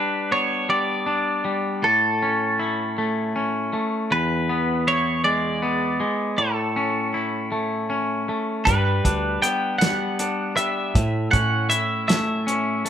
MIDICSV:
0, 0, Header, 1, 5, 480
1, 0, Start_track
1, 0, Key_signature, 3, "major"
1, 0, Tempo, 760456
1, 1156, Time_signature, 6, 3, 24, 8
1, 8138, End_track
2, 0, Start_track
2, 0, Title_t, "Clean electric guitar"
2, 0, Program_c, 0, 27
2, 0, Note_on_c, 0, 71, 82
2, 201, Note_off_c, 0, 71, 0
2, 203, Note_on_c, 0, 73, 87
2, 438, Note_off_c, 0, 73, 0
2, 441, Note_on_c, 0, 74, 90
2, 1162, Note_on_c, 0, 69, 72
2, 1180, Note_off_c, 0, 74, 0
2, 2093, Note_off_c, 0, 69, 0
2, 2600, Note_on_c, 0, 71, 79
2, 3052, Note_off_c, 0, 71, 0
2, 3079, Note_on_c, 0, 73, 90
2, 3307, Note_off_c, 0, 73, 0
2, 3310, Note_on_c, 0, 74, 95
2, 4028, Note_on_c, 0, 69, 71
2, 4053, Note_off_c, 0, 74, 0
2, 4965, Note_off_c, 0, 69, 0
2, 5461, Note_on_c, 0, 71, 83
2, 5945, Note_off_c, 0, 71, 0
2, 5948, Note_on_c, 0, 79, 89
2, 6174, Note_off_c, 0, 79, 0
2, 6176, Note_on_c, 0, 78, 91
2, 6639, Note_off_c, 0, 78, 0
2, 6669, Note_on_c, 0, 76, 93
2, 7138, Note_off_c, 0, 76, 0
2, 7140, Note_on_c, 0, 78, 87
2, 7380, Note_off_c, 0, 78, 0
2, 7382, Note_on_c, 0, 76, 87
2, 7610, Note_off_c, 0, 76, 0
2, 7625, Note_on_c, 0, 76, 85
2, 8138, Note_off_c, 0, 76, 0
2, 8138, End_track
3, 0, Start_track
3, 0, Title_t, "Clean electric guitar"
3, 0, Program_c, 1, 27
3, 0, Note_on_c, 1, 55, 67
3, 0, Note_on_c, 1, 62, 66
3, 197, Note_on_c, 1, 59, 62
3, 429, Note_off_c, 1, 55, 0
3, 436, Note_on_c, 1, 55, 67
3, 664, Note_off_c, 1, 62, 0
3, 671, Note_on_c, 1, 62, 66
3, 905, Note_off_c, 1, 55, 0
3, 913, Note_on_c, 1, 55, 64
3, 1153, Note_off_c, 1, 62, 0
3, 1154, Note_off_c, 1, 55, 0
3, 1156, Note_off_c, 1, 59, 0
3, 1157, Note_on_c, 1, 45, 71
3, 1404, Note_on_c, 1, 61, 65
3, 1638, Note_on_c, 1, 64, 68
3, 1882, Note_on_c, 1, 57, 69
3, 2112, Note_off_c, 1, 61, 0
3, 2120, Note_on_c, 1, 61, 67
3, 2348, Note_off_c, 1, 57, 0
3, 2355, Note_on_c, 1, 57, 61
3, 2356, Note_off_c, 1, 45, 0
3, 2595, Note_off_c, 1, 57, 0
3, 2595, Note_on_c, 1, 40, 74
3, 2597, Note_off_c, 1, 61, 0
3, 2837, Note_on_c, 1, 59, 66
3, 3074, Note_off_c, 1, 64, 0
3, 3076, Note_on_c, 1, 64, 66
3, 3312, Note_on_c, 1, 56, 69
3, 3542, Note_off_c, 1, 59, 0
3, 3549, Note_on_c, 1, 59, 67
3, 3781, Note_off_c, 1, 56, 0
3, 3789, Note_on_c, 1, 56, 61
3, 3794, Note_off_c, 1, 40, 0
3, 4027, Note_on_c, 1, 45, 71
3, 4031, Note_off_c, 1, 56, 0
3, 4031, Note_off_c, 1, 59, 0
3, 4034, Note_off_c, 1, 64, 0
3, 4269, Note_on_c, 1, 61, 64
3, 4507, Note_on_c, 1, 64, 64
3, 4745, Note_on_c, 1, 57, 69
3, 4978, Note_off_c, 1, 61, 0
3, 4985, Note_on_c, 1, 61, 66
3, 5229, Note_off_c, 1, 57, 0
3, 5230, Note_off_c, 1, 45, 0
3, 5231, Note_on_c, 1, 57, 61
3, 5467, Note_off_c, 1, 57, 0
3, 5469, Note_off_c, 1, 61, 0
3, 5470, Note_off_c, 1, 64, 0
3, 5470, Note_on_c, 1, 55, 71
3, 5711, Note_on_c, 1, 62, 63
3, 5952, Note_on_c, 1, 59, 63
3, 6186, Note_off_c, 1, 55, 0
3, 6194, Note_on_c, 1, 55, 70
3, 6428, Note_off_c, 1, 62, 0
3, 6436, Note_on_c, 1, 62, 64
3, 6668, Note_off_c, 1, 55, 0
3, 6676, Note_on_c, 1, 55, 58
3, 6912, Note_off_c, 1, 59, 0
3, 6914, Note_off_c, 1, 55, 0
3, 6914, Note_off_c, 1, 62, 0
3, 6914, Note_on_c, 1, 45, 69
3, 7153, Note_on_c, 1, 61, 66
3, 7387, Note_on_c, 1, 64, 61
3, 7629, Note_on_c, 1, 57, 69
3, 7863, Note_off_c, 1, 61, 0
3, 7870, Note_on_c, 1, 61, 71
3, 8104, Note_off_c, 1, 57, 0
3, 8111, Note_on_c, 1, 57, 63
3, 8114, Note_off_c, 1, 45, 0
3, 8138, Note_off_c, 1, 57, 0
3, 8138, Note_off_c, 1, 61, 0
3, 8138, Note_off_c, 1, 64, 0
3, 8138, End_track
4, 0, Start_track
4, 0, Title_t, "Picked electric bass"
4, 0, Program_c, 2, 34
4, 5472, Note_on_c, 2, 43, 89
4, 5680, Note_off_c, 2, 43, 0
4, 5710, Note_on_c, 2, 38, 83
4, 5918, Note_off_c, 2, 38, 0
4, 6910, Note_on_c, 2, 45, 91
4, 7119, Note_off_c, 2, 45, 0
4, 7151, Note_on_c, 2, 45, 84
4, 7981, Note_off_c, 2, 45, 0
4, 8138, End_track
5, 0, Start_track
5, 0, Title_t, "Drums"
5, 5472, Note_on_c, 9, 36, 101
5, 5472, Note_on_c, 9, 42, 81
5, 5535, Note_off_c, 9, 36, 0
5, 5535, Note_off_c, 9, 42, 0
5, 5713, Note_on_c, 9, 36, 68
5, 5715, Note_on_c, 9, 42, 59
5, 5776, Note_off_c, 9, 36, 0
5, 5778, Note_off_c, 9, 42, 0
5, 5955, Note_on_c, 9, 42, 59
5, 6018, Note_off_c, 9, 42, 0
5, 6194, Note_on_c, 9, 42, 82
5, 6200, Note_on_c, 9, 38, 101
5, 6258, Note_off_c, 9, 42, 0
5, 6263, Note_off_c, 9, 38, 0
5, 6433, Note_on_c, 9, 42, 57
5, 6496, Note_off_c, 9, 42, 0
5, 6674, Note_on_c, 9, 42, 58
5, 6737, Note_off_c, 9, 42, 0
5, 6914, Note_on_c, 9, 36, 97
5, 6916, Note_on_c, 9, 42, 77
5, 6978, Note_off_c, 9, 36, 0
5, 6979, Note_off_c, 9, 42, 0
5, 7154, Note_on_c, 9, 36, 69
5, 7154, Note_on_c, 9, 42, 54
5, 7217, Note_off_c, 9, 36, 0
5, 7217, Note_off_c, 9, 42, 0
5, 7391, Note_on_c, 9, 42, 61
5, 7454, Note_off_c, 9, 42, 0
5, 7633, Note_on_c, 9, 42, 76
5, 7638, Note_on_c, 9, 38, 105
5, 7696, Note_off_c, 9, 42, 0
5, 7701, Note_off_c, 9, 38, 0
5, 7878, Note_on_c, 9, 42, 52
5, 7941, Note_off_c, 9, 42, 0
5, 8115, Note_on_c, 9, 42, 52
5, 8138, Note_off_c, 9, 42, 0
5, 8138, End_track
0, 0, End_of_file